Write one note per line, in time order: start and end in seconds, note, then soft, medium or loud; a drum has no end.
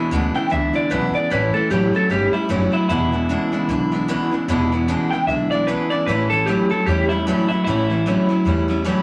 0.00 0.11 E2 medium
0.00 0.11 B2 medium
0.00 0.11 E3 medium
0.00 0.12 G#3 medium
0.00 0.12 D4 medium
0.00 0.12 E4 medium
0.11 0.31 D2 medium
0.11 0.35 E2 medium
0.11 0.33 E2 medium
0.11 0.35 B2 medium
0.11 0.33 C#3 loud
0.11 0.36 E3 medium
0.11 0.35 G#3 medium
0.11 0.34 D4 loud
0.11 0.33 E4 loud
0.34 0.50 E2 medium
0.34 0.50 C#3 loud
0.34 0.49 E3 soft
0.34 0.50 G#3 medium
0.34 0.51 D4 medium
0.34 0.51 E4 medium
0.34 0.51 G5 loud
0.50 0.72 C#2 medium
0.50 0.73 E2 medium
0.50 0.73 D3 loud
0.50 0.74 E3 medium
0.50 0.73 G#3 medium
0.50 0.73 D4 medium
0.50 0.72 E4 medium
0.50 0.74 E5 medium
0.73 0.90 E2 medium
0.73 0.90 D3 medium
0.73 0.90 E3 medium
0.73 0.90 G#3 medium
0.73 0.91 D4 medium
0.73 0.91 E4 medium
0.73 0.91 D5 medium
0.73 muted upright bass stroke medium
0.90 1.11 B1 medium
0.90 1.14 E2 medium
0.90 1.12 E2 medium
0.90 1.14 B2 medium
0.90 1.13 C#3 medium
0.90 1.14 E3 medium
0.90 1.14 G#3 loud
0.90 1.13 D4 medium
0.90 1.12 E4 loud
0.90 1.14 B4 medium
1.13 1.30 E2 medium
1.13 1.30 C#3 medium
1.13 1.30 E3 soft
1.13 1.31 G#3 soft
1.13 1.31 D4 soft
1.13 1.30 E4 soft
1.13 1.31 D5 loud
1.13 muted upright bass stroke medium
1.30 1.47 A1 medium
1.30 1.54 A2 medium
1.30 1.52 A2 medium
1.30 1.54 E3 medium
1.30 1.52 E3 loud
1.30 1.55 G3 medium
1.30 1.54 C#4 medium
1.30 1.52 E4 medium
1.30 1.54 B4 medium
1.54 1.69 A2 medium
1.54 1.70 E3 loud
1.54 1.70 G3 soft
1.54 1.70 C#4 medium
1.54 1.70 E4 medium
1.54 1.70 A4 medium
1.54 muted upright bass stroke medium
1.70 1.90 A1 medium
1.70 1.94 A2 medium
1.70 1.92 A2 medium
1.70 1.94 E3 medium
1.70 1.92 F#3 loud
1.70 1.94 G3 medium
1.70 1.94 C#4 medium
1.70 1.92 E4 medium
1.70 1.94 G4 medium
1.93 2.09 A2 medium
1.93 2.09 F#3 medium
1.93 2.09 G3 soft
1.93 2.10 C#4 medium
1.93 2.10 E4 medium
1.93 2.11 A4 loud
1.93 muted upright bass stroke medium
2.09 2.30 G1 medium
2.09 2.32 A2 medium
2.09 2.33 E3 medium
2.09 2.34 G3 medium
2.09 2.32 G3 medium
2.09 2.33 C#4 medium
2.09 2.32 E4 medium
2.09 2.33 G4 medium
2.33 2.48 A2 medium
2.33 2.49 G3 medium
2.33 2.48 G3 soft
2.33 2.49 C#4 medium
2.33 2.49 E4 medium
2.33 muted upright bass stroke medium
2.49 2.69 F#1 medium
2.49 2.73 A2 medium
2.49 2.71 A2 medium
2.49 2.73 E3 medium
2.49 2.71 F#3 loud
2.49 2.73 G3 medium
2.49 2.72 C#4 loud
2.49 2.71 E4 loud
2.72 2.88 A2 medium
2.72 2.88 F#3 medium
2.72 2.90 G3 soft
2.72 2.90 C#4 soft
2.72 2.89 E4 medium
2.72 2.88 E4 medium
2.88 3.33 E1 medium
2.88 3.10 E2 medium
2.88 3.13 E2 medium
2.88 3.10 B2 loud
2.88 3.13 B2 medium
2.88 3.13 E3 loud
2.88 3.13 G#3 medium
2.88 3.12 D4 medium
2.88 4.05 E4 loud
2.88 3.11 E4 medium
3.12 3.28 E2 medium
3.12 3.28 B2 medium
3.12 3.29 E3 soft
3.12 3.29 G#3 soft
3.12 3.30 D4 medium
3.12 3.29 E4 medium
3.29 3.50 E2 medium
3.29 3.53 E2 medium
3.29 3.53 B2 medium
3.29 3.51 C#3 loud
3.29 3.53 E3 medium
3.29 3.52 G#3 medium
3.29 3.52 D4 medium
3.29 3.51 E4 medium
3.52 3.67 E2 medium
3.52 3.67 C#3 loud
3.52 3.68 E3 medium
3.52 3.68 G#3 medium
3.52 3.69 D4 medium
3.52 3.69 E4 medium
3.52 muted upright bass stroke medium
3.68 4.12 B1 medium
3.68 3.90 E2 medium
3.68 3.90 D3 loud
3.68 3.92 E3 medium
3.68 3.92 G#3 medium
3.68 3.91 D4 medium
3.68 3.90 E4 medium
3.91 4.07 E2 medium
3.91 4.07 D3 medium
3.91 4.08 E3 medium
3.91 4.08 G#3 medium
3.91 4.09 D4 medium
3.91 4.08 E4 medium
4.08 4.32 E2 loud
4.08 4.30 E2 medium
4.08 4.32 B2 medium
4.08 4.30 C#3 loud
4.08 4.32 E3 medium
4.08 4.32 G#3 loud
4.08 4.31 D4 loud
4.08 4.30 E4 loud
4.31 4.47 E2 medium
4.31 4.47 C#3 medium
4.31 4.48 E3 soft
4.31 4.48 G#3 medium
4.31 4.49 D4 medium
4.31 4.48 E4 medium
4.31 muted upright bass stroke medium
4.48 4.92 E1 medium
4.48 4.72 E2 loud
4.48 4.69 E2 medium
4.48 4.72 B2 loud
4.48 4.70 B2 loud
4.48 4.72 E3 loud
4.48 4.72 G#3 loud
4.48 4.71 D4 loud
4.48 4.71 E4 loud
4.72 4.87 E2 medium
4.72 4.87 B2 medium
4.72 4.87 E3 medium
4.72 4.88 G#3 medium
4.72 4.88 D4 medium
4.72 4.88 E4 medium
4.88 5.09 E2 medium
4.88 5.12 E2 medium
4.88 5.12 B2 medium
4.88 5.09 C#3 loud
4.88 5.12 E3 medium
4.88 5.12 G#3 loud
4.88 5.12 D4 loud
4.88 5.11 E4 loud
5.11 5.26 E2 medium
5.11 5.27 C#3 medium
5.11 5.27 E3 medium
5.11 5.28 G#3 medium
5.11 5.28 D4 medium
5.11 5.28 E4 medium
5.11 5.27 G5 loud
5.11 muted upright bass stroke medium
5.27 5.71 B1 medium
5.27 5.49 E2 medium
5.27 5.49 D3 medium
5.27 5.51 E3 medium
5.27 5.52 G#3 medium
5.27 5.51 D4 medium
5.27 5.50 E5 medium
5.31 5.51 E4 medium
5.51 5.66 E2 medium
5.51 5.66 D3 medium
5.51 5.67 E3 soft
5.51 5.68 G#3 medium
5.51 5.68 D4 medium
5.51 5.68 E4 medium
5.51 5.67 D5 loud
5.67 5.89 E2 medium
5.67 5.91 E2 medium
5.67 5.91 B2 medium
5.67 5.89 C#3 loud
5.67 5.91 E3 medium
5.67 5.91 G#3 medium
5.67 5.90 D4 medium
5.67 5.90 E4 medium
5.67 5.90 B4 medium
5.90 6.06 E2 medium
5.90 6.06 C#3 medium
5.90 6.07 E3 soft
5.90 6.08 G#3 medium
5.90 6.08 D4 medium
5.90 6.07 E4 medium
5.90 6.07 D5 medium
5.90 muted upright bass stroke medium
6.06 6.51 A1 medium
6.06 6.31 A2 medium
6.06 6.29 A2 medium
6.06 6.29 E3 loud
6.06 6.31 E3 medium
6.06 6.31 G3 loud
6.06 6.31 C#4 medium
6.06 6.30 E4 medium
6.06 6.29 B4 loud
6.30 6.45 A2 medium
6.30 6.46 E3 medium
6.30 6.47 G3 soft
6.30 6.47 C#4 medium
6.30 6.47 E4 medium
6.30 6.46 A4 loud
6.46 6.71 A2 medium
6.46 6.68 A2 loud
6.46 6.71 E3 medium
6.46 6.69 F#3 loud
6.46 6.71 G3 medium
6.46 6.70 C#4 medium
6.46 6.69 E4 medium
6.46 6.69 G4 medium
6.70 6.86 A2 medium
6.70 6.86 F#3 medium
6.70 6.86 G3 soft
6.70 6.87 C#4 medium
6.70 6.87 E4 medium
6.70 6.87 A4 medium
6.70 muted upright bass stroke medium
6.86 7.31 E2 medium
6.86 7.08 A2 medium
6.86 7.10 E3 medium
6.86 7.11 G3 medium
6.86 7.08 G3 medium
6.86 7.10 C#4 medium
6.86 7.08 E4 medium
6.86 7.09 G4 medium
7.09 7.25 A2 medium
7.09 7.25 G3 medium
7.09 7.27 G3 soft
7.09 7.27 C#4 soft
7.09 7.25 E4 loud
7.09 7.26 E4 medium
7.26 7.47 A2 medium
7.26 7.50 A2 medium
7.26 7.50 E3 medium
7.26 7.48 F#3 medium
7.26 7.51 G3 loud
7.26 7.51 C#4 loud
7.26 7.49 E4 medium
7.49 7.65 A2 medium
7.49 7.65 F#3 medium
7.49 7.67 C#4 soft
7.49 7.63 E4 loud
7.49 7.67 E4 soft
7.49 muted upright bass stroke medium
7.53 7.66 G3 soft
7.64 8.10 A1 medium
7.64 7.90 A2 medium
7.64 7.88 A2 medium
7.64 7.88 E3 loud
7.64 7.90 E3 medium
7.64 7.90 G3 medium
7.64 7.90 C#4 medium
7.64 8.81 E4 loud
7.64 7.89 E4 medium
7.90 8.04 A2 medium
7.90 8.05 E3 medium
7.90 8.06 G3 soft
7.90 8.06 C#4 soft
7.90 8.06 E4 medium
8.06 8.27 A2 loud
8.06 8.30 A2 medium
8.06 8.30 E3 medium
8.06 8.27 F#3 loud
8.06 8.30 G3 medium
8.06 8.29 C#4 medium
8.06 8.28 E4 medium
8.29 8.44 A2 medium
8.29 8.45 F#3 medium
8.29 8.45 G3 medium
8.29 8.46 C#4 medium
8.29 8.46 E4 medium
8.29 muted upright bass stroke medium
8.45 8.90 E2 medium
8.45 8.67 A2 medium
8.45 8.69 E3 medium
8.45 8.70 G3 medium
8.45 8.67 G3 medium
8.45 8.69 C#4 medium
8.45 8.67 E4 medium
8.68 8.84 A2 medium
8.68 8.84 G3 medium
8.68 8.85 G3 medium
8.68 8.85 C#4 medium
8.68 8.85 E4 medium
8.85 9.03 A2 medium
8.85 9.03 E3 loud
8.85 9.03 F#3 medium
8.85 9.03 G3 loud
8.85 9.03 C#4 loud
8.85 9.03 E4 loud